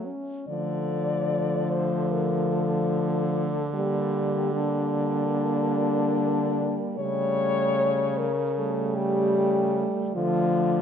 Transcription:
0.00 0.11 F#3 soft
0.00 0.15 A3 soft
0.06 0.48 C#4 soft
0.48 6.83 D3 medium
0.48 3.57 F3 medium
0.48 3.70 A3 medium
0.48 1.72 D5 medium
1.71 2.12 C5 medium
2.11 2.54 A#4 medium
2.52 3.73 A4 medium
3.74 4.52 G3 medium
3.74 4.52 A#3 medium
3.74 4.55 G4 medium
4.53 6.97 G3 medium
4.53 6.96 A#3 medium
4.53 6.82 D4 medium
6.99 9.85 C#3 medium
6.99 8.29 G3 medium
6.99 8.29 A3 medium
6.99 8.19 C#5 loud
8.18 8.60 A#4 medium
8.59 10.13 G3 medium
8.59 10.13 A3 medium
8.59 8.97 A4 medium
8.95 9.88 G4 medium
10.15 10.82 D3 medium
10.15 10.82 F3 medium
10.15 10.82 A3 medium
10.15 10.82 F4 medium

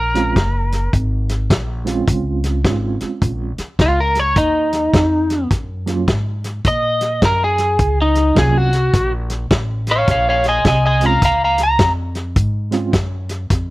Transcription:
0.00 0.34 A#1 medium
0.00 0.91 A#4 medium
0.14 0.34 G#3 medium
0.14 0.34 C4 medium
0.14 0.34 C#4 medium
0.14 0.35 F4 medium
0.14 snare soft
0.14 closed hi-hat medium
0.36 0.91 F#1 medium
0.36 kick medium
0.36 snare medium
0.36 closed hi-hat medium
0.72 snare soft
0.72 closed hi-hat medium
0.93 1.49 G#1 medium
0.93 kick medium
0.93 closed hi-hat medium
1.29 snare soft
1.29 closed hi-hat medium
1.50 2.06 A#1 medium
1.50 kick medium
1.50 snare loud
1.50 closed hi-hat medium
1.85 2.60 G#3 medium
1.85 2.60 C4 medium
1.85 2.60 C#4 medium
1.85 2.61 F4 medium
1.85 snare soft
1.85 closed hi-hat medium
2.08 2.63 C#2 medium
2.08 kick medium
2.08 closed hi-hat medium
2.44 snare soft
2.44 closed hi-hat medium
2.64 2.98 G#1 medium
2.64 3.50 G#3 medium
2.64 3.51 C4 medium
2.64 3.51 C#4 medium
2.64 3.51 F4 medium
2.64 kick medium
2.64 snare loud
2.64 closed hi-hat medium
3.00 muted upright bass stroke soft
3.00 snare soft
3.00 closed hi-hat medium
3.22 3.56 A#1 medium
3.22 kick medium
3.22 closed hi-hat medium
3.58 muted upright bass stroke soft
3.58 snare soft
3.58 closed hi-hat medium
3.79 4.34 C#2 medium
3.79 3.99 F4 medium
3.79 kick medium
3.79 snare medium
3.79 closed hi-hat medium
4.00 4.19 A#4 medium
4.15 snare soft
4.15 closed hi-hat medium
4.19 4.37 C#5 medium
4.36 4.92 D#2 medium
4.36 5.48 D#4 medium
4.36 kick medium
4.36 closed hi-hat medium
4.73 snare soft
4.73 closed hi-hat medium
4.93 5.49 F2 medium
4.93 kick medium
4.93 snare loud
4.93 closed hi-hat medium
5.30 snare soft
5.30 closed hi-hat medium
5.51 6.06 F#2 medium
5.51 kick medium
5.51 snare soft
5.51 closed hi-hat medium
5.86 6.05 F#3 medium
5.86 6.06 A#3 medium
5.86 6.06 C#4 medium
5.86 6.06 F4 medium
5.86 snare soft
5.86 closed hi-hat medium
6.08 6.63 G#2 medium
6.08 kick medium
6.08 snare loud
6.08 closed hi-hat medium
6.44 snare soft
6.44 closed hi-hat medium
6.65 7.20 A#2 medium
6.65 7.22 D#5 medium
6.65 kick medium
6.65 closed hi-hat medium
7.01 snare soft
7.01 closed hi-hat medium
7.22 7.77 F#2 medium
7.22 7.42 A#4 medium
7.22 kick medium
7.22 snare loud
7.22 closed hi-hat medium
7.44 7.98 G#4 medium
7.58 snare soft
7.58 closed hi-hat medium
7.79 8.35 C#2 medium
7.79 kick medium
7.79 closed hi-hat medium
8.02 8.37 D#4 medium
8.15 snare soft
8.15 closed hi-hat medium
8.35 8.92 C2 medium
8.35 8.68 F#3 medium
8.35 8.68 A#3 medium
8.35 8.69 C#4 medium
8.35 8.69 F4 medium
8.35 8.57 G#4 medium
8.35 kick medium
8.35 snare loud
8.35 closed hi-hat medium
8.57 9.12 F#4 medium
8.73 snare soft
8.73 closed hi-hat medium
8.93 9.49 A#1 medium
8.93 kick medium
8.93 snare soft
8.93 closed hi-hat medium
9.30 snare soft
9.30 closed hi-hat medium
9.50 10.06 A1 medium
9.50 kick medium
9.50 snare loud
9.50 closed hi-hat medium
9.87 snare soft
9.87 closed hi-hat medium
9.91 10.09 C#5 medium
9.91 10.09 F5 medium
10.08 10.63 A#1 medium
10.08 10.27 C#5 medium
10.08 10.28 F5 medium
10.08 kick medium
10.08 snare soft
10.08 closed hi-hat medium
10.29 10.46 C#5 medium
10.29 10.47 F5 medium
10.44 snare soft
10.44 closed hi-hat medium
10.48 10.65 D#5 medium
10.48 10.66 G#5 medium
10.65 11.20 C2 medium
10.65 10.84 D#5 medium
10.65 10.85 G#5 medium
10.65 kick medium
10.65 snare medium
10.65 closed hi-hat medium
10.86 11.05 D#5 medium
10.86 11.06 G#5 medium
11.00 11.19 G#3 medium
11.00 11.20 C4 medium
11.00 11.20 C#4 medium
11.00 11.20 F4 medium
11.00 snare soft
11.00 closed hi-hat medium
11.05 11.23 F5 medium
11.05 11.23 A#5 medium
11.22 11.77 C#2 medium
11.22 11.41 F5 medium
11.22 11.42 A#5 medium
11.22 kick medium
11.22 closed hi-hat medium
11.44 11.60 F5 medium
11.44 11.61 A#5 medium
11.58 snare soft
11.58 closed hi-hat medium
11.63 11.92 A#5 medium
11.79 12.34 F2 medium
11.79 kick medium
11.79 snare medium
11.79 closed hi-hat medium
12.15 snare soft
12.15 closed hi-hat medium
12.36 12.91 G#2 medium
12.36 kick medium
12.36 closed hi-hat medium
12.71 12.91 G#3 medium
12.71 12.91 C4 medium
12.71 12.91 C#4 medium
12.71 12.92 F4 medium
12.71 snare soft
12.71 closed hi-hat medium
12.93 13.49 F#2 medium
12.93 kick medium
12.93 snare medium
12.93 closed hi-hat medium
13.29 snare soft
13.29 closed hi-hat medium
13.50 13.70 F2 medium
13.50 kick medium
13.50 snare soft
13.50 closed hi-hat medium

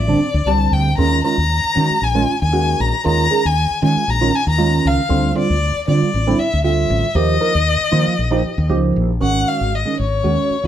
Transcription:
0.00 0.17 A1 medium
0.00 0.48 D5 medium
0.08 0.18 D3 medium
0.08 0.18 G3 medium
0.08 0.19 C4 medium
0.08 0.19 D4 loud
0.20 0.28 C4 soft
0.20 0.28 G4 soft
0.34 0.45 D2 medium
0.46 0.70 C2 medium
0.46 0.89 D3 medium
0.46 0.89 G3 medium
0.46 0.89 C4 medium
0.46 0.89 G4 medium
0.46 0.74 A5 medium
0.72 0.95 D2 medium
0.72 0.97 G5 medium
0.98 1.20 D#2 loud
0.98 1.19 D#3 medium
0.98 1.19 G#3 medium
0.98 1.19 C#4 medium
0.98 1.20 F4 medium
0.98 1.22 A#5 loud
1.24 1.35 D#3 medium
1.24 1.35 G#3 medium
1.24 1.36 C#4 medium
1.24 1.36 F4 medium
1.24 2.05 A#5 medium
1.37 1.60 D#2 medium
1.37 1.44 C#4 soft
1.37 1.44 F#4 soft
1.64 muted fretless electric bass stroke soft
1.75 1.96 D#3 medium
1.75 1.88 D#3 medium
1.75 1.96 G#3 medium
1.75 1.97 C#4 medium
1.75 1.97 F#4 medium
1.90 muted fretless electric bass stroke soft
2.02 2.23 A#1 medium
2.02 2.41 G#5 medium
2.15 2.25 D#3 medium
2.15 2.25 G#3 medium
2.15 2.25 C#4 medium
2.15 2.25 F4 loud
2.27 2.34 C#4 soft
2.27 2.34 F4 soft
2.42 2.74 D#2 loud
2.42 2.82 G#5 medium
2.53 2.94 D#3 medium
2.53 2.94 G#3 medium
2.53 2.95 C#4 medium
2.53 2.95 F#4 medium
2.80 2.91 A#1 loud
2.80 3.05 A#5 medium
3.05 3.27 D#2 medium
3.05 3.25 D#3 loud
3.05 3.26 G#3 medium
3.05 3.26 C#4 medium
3.05 3.26 F4 loud
3.05 3.47 A#5 loud
3.30 3.41 D#3 medium
3.30 3.41 G#3 medium
3.30 3.42 C#4 medium
3.30 3.42 G#4 medium
3.44 3.67 D#2 medium
3.44 3.50 C#4 soft
3.44 3.50 D#4 soft
3.44 3.83 G#5 medium
3.70 muted fretless electric bass stroke soft
3.82 4.03 D#3 medium
3.82 3.94 D#3 loud
3.82 4.03 G#3 medium
3.82 4.03 C#4 medium
3.82 4.03 F4 medium
3.82 4.11 G#5 medium
3.96 muted fretless electric bass stroke soft
4.08 4.29 A#1 medium
4.08 4.37 A#5 medium
4.21 4.30 D#3 medium
4.21 4.31 G#3 medium
4.21 4.31 C#4 medium
4.21 4.31 F4 medium
4.33 4.39 C#4 soft
4.33 4.40 D#4 soft
4.33 4.48 G#5 medium
4.47 4.79 D#2 medium
4.47 4.88 A#5 medium
4.58 5.00 D#3 medium
4.58 5.00 G#3 medium
4.58 5.00 C#4 medium
4.58 5.00 F4 medium
4.85 4.97 C#2 loud
4.85 5.37 F5 medium
5.09 5.32 D2 loud
5.09 5.30 D3 medium
5.09 5.31 G3 medium
5.09 5.31 C4 medium
5.09 5.31 F4 loud
5.35 5.46 D3 medium
5.35 5.47 G3 medium
5.35 5.47 C4 medium
5.35 5.47 F4 medium
5.35 5.85 D5 medium
5.49 5.72 D2 medium
5.49 5.55 C4 soft
5.49 5.56 F4 soft
5.87 6.08 D3 medium
5.87 5.99 D3 medium
5.87 6.08 G3 medium
5.87 6.08 C4 medium
5.87 6.08 F4 medium
5.87 6.40 D5 medium
6.02 muted fretless electric bass stroke soft
6.14 6.35 A1 medium
6.27 6.36 D3 loud
6.27 6.36 G3 medium
6.27 6.37 C4 medium
6.27 6.37 E4 loud
6.39 6.45 C4 soft
6.39 6.46 E4 soft
6.39 6.64 E5 medium
6.39 muted fretless electric bass stroke soft
6.53 6.85 D2 medium
6.64 7.06 D3 medium
6.64 7.06 G3 medium
6.64 7.06 C4 medium
6.64 7.06 F4 medium
6.64 7.17 E5 medium
6.90 7.02 A1 loud
7.15 7.37 D#2 loud
7.15 7.36 F3 medium
7.15 7.36 A#3 medium
7.15 7.36 D#4 medium
7.15 7.37 G4 loud
7.15 8.70 D#5 medium
7.40 7.52 F3 medium
7.40 7.52 A#3 medium
7.40 7.52 D#4 medium
7.40 7.52 A#4 medium
7.55 7.77 D#2 medium
7.55 7.61 D#4 soft
7.55 7.61 G4 soft
7.81 muted fretless electric bass stroke soft
7.91 8.04 D#3 medium
7.91 8.13 F3 medium
7.91 8.13 A#3 medium
7.91 8.13 D#4 medium
7.91 8.13 F4 medium
8.07 muted fretless electric bass stroke soft
8.19 8.40 A#1 medium
8.31 8.41 F3 loud
8.31 8.41 A#3 medium
8.31 8.41 D#4 medium
8.31 8.41 G4 loud
8.58 8.68 D#2 loud
8.69 8.93 C#2 medium
8.69 9.11 F3 medium
8.69 9.11 A#3 medium
8.69 9.11 D#4 medium
8.69 9.11 G4 loud
8.96 9.19 A#1 medium
9.21 9.43 G#1 medium
9.21 9.72 D#3 medium
9.21 9.72 G#3 medium
9.21 9.72 C#4 medium
9.21 9.72 F#4 medium
9.21 9.50 F#5 medium
9.48 9.77 F5 medium
9.61 9.83 G#1 medium
9.75 10.00 D#5 medium
9.85 9.95 D#3 medium
9.85 9.95 G#3 medium
9.85 9.96 C#4 medium
9.85 9.96 D#4 medium
9.99 10.21 G#1 medium
9.99 10.66 C#5 medium
10.23 10.36 D#2 medium
10.23 10.55 D#3 medium
10.23 10.55 G#3 medium
10.23 10.55 C#4 medium
10.23 10.55 F#4 medium
10.51 muted fretless electric bass stroke soft
10.63 10.67 D#2 medium
10.63 10.67 D#3 medium
10.63 10.67 G#3 medium
10.63 10.67 C#4 medium
10.63 10.67 F4 medium

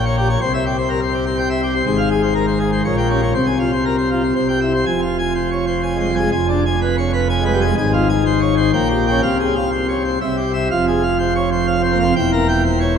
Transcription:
0.00 0.37 A#1 medium
0.00 0.37 A#2 medium
0.06 0.16 C#5 loud
0.17 0.28 G4 medium
0.30 0.40 C#5 loud
0.41 1.82 C2 loud
0.41 1.82 C3 loud
0.41 0.52 C5 loud
0.54 0.64 E5 medium
0.66 0.76 G4 medium
0.78 0.88 C5 medium
0.89 1.00 A#4 medium
1.02 1.12 C5 loud
1.14 1.24 G4 loud
1.26 1.37 C5 medium
1.38 1.49 G5 loud
1.50 1.61 E5 medium
1.63 1.73 G4 medium
1.74 1.84 C5 loud
1.86 2.81 G#1 loud
1.86 2.81 G#2 loud
1.86 1.97 C5 loud
1.98 2.09 F5 loud
2.11 2.21 G#4 medium
2.23 2.34 C5 medium
2.35 2.45 A#4 medium
2.48 2.58 C5 medium
2.59 2.70 G#4 medium
2.72 2.82 C5 medium
2.85 3.33 A#1 medium
2.85 3.33 A#2 medium
2.85 2.95 C#5 medium
2.98 3.08 G5 loud
3.10 3.21 C#4 medium
3.10 3.21 G4 medium
3.22 3.33 C#5 medium
3.34 4.33 C2 medium
3.34 4.33 C3 medium
3.34 3.46 C5 medium
3.46 3.58 G#5 medium
3.59 3.71 F4 medium
3.73 3.84 C5 medium
3.85 3.96 A#4 medium
3.98 4.09 C5 medium
4.11 4.22 F4 medium
4.23 4.34 C5 medium
4.36 4.85 C2 medium
4.36 4.84 C3 medium
4.36 4.47 C5 medium
4.49 4.60 G5 medium
4.61 4.72 E4 medium
4.74 4.84 C5 medium
4.86 6.28 F1 medium
4.86 6.28 F2 medium
4.86 5.00 G#5 loud
5.02 5.17 F4 medium
5.19 5.33 G#5 medium
5.35 5.49 C5 medium
5.51 5.65 C#5 medium
5.67 5.81 C5 medium
5.83 5.98 G#5 medium
5.95 6.06 G#3 medium
6.00 6.14 C5 medium
6.09 6.19 G3 medium
6.16 6.30 G#5 medium
6.20 6.31 G#3 medium
6.32 7.73 F1 loud
6.32 7.73 F2 loud
6.32 6.47 G#5 loud
6.49 6.63 D4 medium
6.66 6.80 G#5 medium
6.82 6.96 B4 medium
6.98 7.11 C#5 medium
7.13 7.28 B4 medium
7.30 7.44 G#5 medium
7.42 7.52 G#3 medium
7.42 7.59 B4 loud
7.53 7.63 G3 medium
7.62 7.75 G#5 loud
7.66 7.76 G#3 medium
7.78 8.71 G#1 loud
7.78 8.71 G#2 loud
7.78 7.92 G#5 loud
7.93 8.07 F4 medium
8.10 8.23 G#5 loud
8.26 8.40 C5 medium
8.41 8.55 C#5 medium
8.57 8.71 C5 medium
8.73 9.21 A#1 loud
8.73 9.21 A#2 loud
8.73 8.88 G5 loud
8.90 9.04 G4 medium
9.07 9.21 C#4 medium
9.07 9.20 G5 medium
9.22 10.18 C2 medium
9.22 10.18 C3 medium
9.22 9.37 F5 loud
9.40 9.54 G#4 medium
9.55 9.70 F5 medium
9.72 9.86 C5 medium
9.89 10.02 C#5 medium
10.05 10.19 C5 medium
10.21 10.69 C2 medium
10.21 10.69 C3 medium
10.21 10.36 E5 medium
10.37 10.52 G4 medium
10.53 10.68 E5 medium
10.70 12.12 F1 loud
10.70 12.12 F2 medium
10.70 10.85 F5 loud
10.88 11.02 G#4 medium
11.03 11.17 F5 medium
11.19 11.33 C5 medium
11.36 11.49 C#5 medium
11.51 11.66 C5 medium
11.67 11.82 F5 medium
11.80 11.91 C4 medium
11.80 11.98 C5 medium
11.92 12.02 A#3 medium
12.00 12.14 F5 medium
12.04 12.14 C4 medium
12.16 12.98 E1 loud
12.16 12.98 E2 loud
12.16 12.30 G5 loud
12.33 12.47 A#4 medium
12.48 12.63 G5 loud
12.64 12.79 C5 medium
12.80 12.94 C#5 medium

